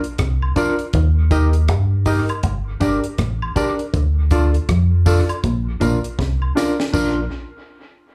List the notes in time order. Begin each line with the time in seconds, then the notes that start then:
0.04 closed hi-hat
0.18 C2 C3, kick, cross-stick, closed hi-hat
0.42 high woodblock
0.56 D4 F4 A#4 D5, kick, closed hi-hat, tambourine
0.79 A#4 D5, closed hi-hat
0.93 D#2 D#3, kick, closed hi-hat
1.31 D#4 G4 A#4 D#5, kick, closed hi-hat, tambourine
1.53 closed hi-hat
1.68 G2 G3, kick, cross-stick, closed hi-hat
2.06 D#4 G4 A#4 D#5, kick, open hi-hat, tambourine
2.29 A#4 D#5, closed hi-hat, high woodblock
2.43 G1 G2, kick, closed hi-hat
2.80 G1 G2 D4 G4 A#4 D5, kick, closed hi-hat, tambourine
3.04 closed hi-hat
3.18 A1 A2, kick, cross-stick, closed hi-hat
3.42 high woodblock
3.56 D4 G4 A#4 D5, kick, closed hi-hat, tambourine
3.79 A#4 D5, closed hi-hat
3.94 D2 D3, kick, closed hi-hat
4.30 D4 F4 A4 D5, kick, closed hi-hat, tambourine
4.54 closed hi-hat
4.69 F2 F3, kick, cross-stick, closed hi-hat
5.06 D4 F4 A4 D5, kick, open hi-hat, tambourine
5.29 A4 D5, closed hi-hat, high woodblock
5.44 A#1 A#2, kick, closed hi-hat
5.80 A#1 A#2 D4 F4 A#4 D5, kick, closed hi-hat, tambourine
6.04 closed hi-hat
6.19 C2 C3, kick, snare
6.42 high woodblock
6.55 D4 F4 A#4 D5, snare, tambourine
6.80 snare
6.93 A#1 D4 F4 A#4 D5, kick, crash, tambourine